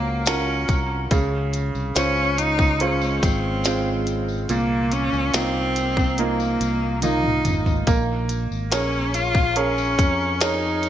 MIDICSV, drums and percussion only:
0, 0, Header, 1, 2, 480
1, 0, Start_track
1, 0, Key_signature, -5, "minor"
1, 0, Tempo, 845070
1, 632, Time_signature, 4, 2, 24, 8
1, 6187, End_track
2, 0, Start_track
2, 0, Title_t, "Drums"
2, 146, Note_on_c, 9, 54, 73
2, 151, Note_on_c, 9, 42, 85
2, 155, Note_on_c, 9, 38, 108
2, 202, Note_off_c, 9, 54, 0
2, 208, Note_off_c, 9, 42, 0
2, 212, Note_off_c, 9, 38, 0
2, 386, Note_on_c, 9, 54, 43
2, 391, Note_on_c, 9, 36, 83
2, 391, Note_on_c, 9, 42, 67
2, 443, Note_off_c, 9, 54, 0
2, 447, Note_off_c, 9, 36, 0
2, 448, Note_off_c, 9, 42, 0
2, 630, Note_on_c, 9, 42, 81
2, 630, Note_on_c, 9, 54, 55
2, 631, Note_on_c, 9, 36, 103
2, 687, Note_off_c, 9, 42, 0
2, 687, Note_off_c, 9, 54, 0
2, 688, Note_off_c, 9, 36, 0
2, 869, Note_on_c, 9, 54, 45
2, 872, Note_on_c, 9, 42, 69
2, 926, Note_off_c, 9, 54, 0
2, 929, Note_off_c, 9, 42, 0
2, 994, Note_on_c, 9, 54, 29
2, 1051, Note_off_c, 9, 54, 0
2, 1109, Note_on_c, 9, 54, 75
2, 1112, Note_on_c, 9, 42, 88
2, 1116, Note_on_c, 9, 38, 94
2, 1166, Note_off_c, 9, 54, 0
2, 1169, Note_off_c, 9, 42, 0
2, 1173, Note_off_c, 9, 38, 0
2, 1230, Note_on_c, 9, 54, 28
2, 1287, Note_off_c, 9, 54, 0
2, 1348, Note_on_c, 9, 54, 38
2, 1354, Note_on_c, 9, 42, 97
2, 1404, Note_off_c, 9, 54, 0
2, 1411, Note_off_c, 9, 42, 0
2, 1470, Note_on_c, 9, 36, 89
2, 1479, Note_on_c, 9, 54, 31
2, 1527, Note_off_c, 9, 36, 0
2, 1536, Note_off_c, 9, 54, 0
2, 1591, Note_on_c, 9, 42, 90
2, 1648, Note_off_c, 9, 42, 0
2, 1712, Note_on_c, 9, 54, 51
2, 1769, Note_off_c, 9, 54, 0
2, 1833, Note_on_c, 9, 36, 96
2, 1836, Note_on_c, 9, 42, 84
2, 1836, Note_on_c, 9, 54, 55
2, 1890, Note_off_c, 9, 36, 0
2, 1892, Note_off_c, 9, 42, 0
2, 1892, Note_off_c, 9, 54, 0
2, 2067, Note_on_c, 9, 54, 65
2, 2072, Note_on_c, 9, 42, 88
2, 2077, Note_on_c, 9, 38, 101
2, 2123, Note_off_c, 9, 54, 0
2, 2129, Note_off_c, 9, 42, 0
2, 2133, Note_off_c, 9, 38, 0
2, 2311, Note_on_c, 9, 42, 68
2, 2311, Note_on_c, 9, 54, 43
2, 2367, Note_off_c, 9, 54, 0
2, 2368, Note_off_c, 9, 42, 0
2, 2433, Note_on_c, 9, 54, 29
2, 2490, Note_off_c, 9, 54, 0
2, 2552, Note_on_c, 9, 42, 83
2, 2554, Note_on_c, 9, 54, 54
2, 2609, Note_off_c, 9, 42, 0
2, 2611, Note_off_c, 9, 54, 0
2, 2792, Note_on_c, 9, 42, 68
2, 2793, Note_on_c, 9, 54, 44
2, 2849, Note_off_c, 9, 42, 0
2, 2850, Note_off_c, 9, 54, 0
2, 2916, Note_on_c, 9, 54, 29
2, 2973, Note_off_c, 9, 54, 0
2, 3031, Note_on_c, 9, 42, 82
2, 3031, Note_on_c, 9, 54, 72
2, 3035, Note_on_c, 9, 38, 109
2, 3088, Note_off_c, 9, 42, 0
2, 3088, Note_off_c, 9, 54, 0
2, 3091, Note_off_c, 9, 38, 0
2, 3271, Note_on_c, 9, 54, 42
2, 3272, Note_on_c, 9, 42, 92
2, 3328, Note_off_c, 9, 54, 0
2, 3329, Note_off_c, 9, 42, 0
2, 3391, Note_on_c, 9, 36, 81
2, 3403, Note_on_c, 9, 54, 33
2, 3447, Note_off_c, 9, 36, 0
2, 3460, Note_off_c, 9, 54, 0
2, 3510, Note_on_c, 9, 42, 87
2, 3567, Note_off_c, 9, 42, 0
2, 3634, Note_on_c, 9, 54, 52
2, 3691, Note_off_c, 9, 54, 0
2, 3754, Note_on_c, 9, 42, 82
2, 3758, Note_on_c, 9, 54, 45
2, 3811, Note_off_c, 9, 42, 0
2, 3815, Note_off_c, 9, 54, 0
2, 3989, Note_on_c, 9, 42, 93
2, 3989, Note_on_c, 9, 54, 69
2, 3990, Note_on_c, 9, 48, 57
2, 4045, Note_off_c, 9, 42, 0
2, 4046, Note_off_c, 9, 54, 0
2, 4047, Note_off_c, 9, 48, 0
2, 4110, Note_on_c, 9, 47, 63
2, 4167, Note_off_c, 9, 47, 0
2, 4231, Note_on_c, 9, 42, 73
2, 4232, Note_on_c, 9, 45, 85
2, 4232, Note_on_c, 9, 54, 46
2, 4288, Note_off_c, 9, 42, 0
2, 4289, Note_off_c, 9, 45, 0
2, 4289, Note_off_c, 9, 54, 0
2, 4352, Note_on_c, 9, 43, 88
2, 4357, Note_on_c, 9, 54, 30
2, 4409, Note_off_c, 9, 43, 0
2, 4414, Note_off_c, 9, 54, 0
2, 4470, Note_on_c, 9, 42, 84
2, 4472, Note_on_c, 9, 36, 96
2, 4475, Note_on_c, 9, 54, 53
2, 4527, Note_off_c, 9, 42, 0
2, 4528, Note_off_c, 9, 36, 0
2, 4532, Note_off_c, 9, 54, 0
2, 4710, Note_on_c, 9, 42, 72
2, 4711, Note_on_c, 9, 54, 45
2, 4767, Note_off_c, 9, 42, 0
2, 4768, Note_off_c, 9, 54, 0
2, 4838, Note_on_c, 9, 54, 30
2, 4895, Note_off_c, 9, 54, 0
2, 4951, Note_on_c, 9, 42, 78
2, 4952, Note_on_c, 9, 54, 76
2, 4954, Note_on_c, 9, 38, 95
2, 5008, Note_off_c, 9, 42, 0
2, 5009, Note_off_c, 9, 54, 0
2, 5011, Note_off_c, 9, 38, 0
2, 5072, Note_on_c, 9, 54, 29
2, 5129, Note_off_c, 9, 54, 0
2, 5190, Note_on_c, 9, 54, 41
2, 5193, Note_on_c, 9, 42, 85
2, 5247, Note_off_c, 9, 54, 0
2, 5250, Note_off_c, 9, 42, 0
2, 5309, Note_on_c, 9, 36, 84
2, 5323, Note_on_c, 9, 54, 29
2, 5366, Note_off_c, 9, 36, 0
2, 5380, Note_off_c, 9, 54, 0
2, 5430, Note_on_c, 9, 42, 88
2, 5486, Note_off_c, 9, 42, 0
2, 5554, Note_on_c, 9, 54, 53
2, 5611, Note_off_c, 9, 54, 0
2, 5672, Note_on_c, 9, 36, 93
2, 5675, Note_on_c, 9, 42, 82
2, 5677, Note_on_c, 9, 54, 51
2, 5729, Note_off_c, 9, 36, 0
2, 5732, Note_off_c, 9, 42, 0
2, 5734, Note_off_c, 9, 54, 0
2, 5910, Note_on_c, 9, 54, 79
2, 5911, Note_on_c, 9, 42, 83
2, 5915, Note_on_c, 9, 38, 110
2, 5967, Note_off_c, 9, 54, 0
2, 5968, Note_off_c, 9, 42, 0
2, 5972, Note_off_c, 9, 38, 0
2, 6150, Note_on_c, 9, 54, 42
2, 6151, Note_on_c, 9, 42, 67
2, 6187, Note_off_c, 9, 42, 0
2, 6187, Note_off_c, 9, 54, 0
2, 6187, End_track
0, 0, End_of_file